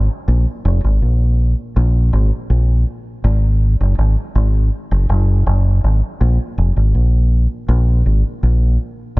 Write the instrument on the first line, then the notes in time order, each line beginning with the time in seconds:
fingered electric bass
0.28 A#1
0.65 F1
0.84 G#1
1.02 A#1
1.76 A#1
2.13 G#1
2.50 A#1
3.24 G#1
3.80 F#1
3.98 G#1
4.35 G#1
4.91 F#1
5.09 F#1
5.46 F#1
5.84 G#1
6.21 A#1
6.58 F1
6.76 G#1
6.95 A#1
7.69 A#1
8.06 G#1
8.43 A#1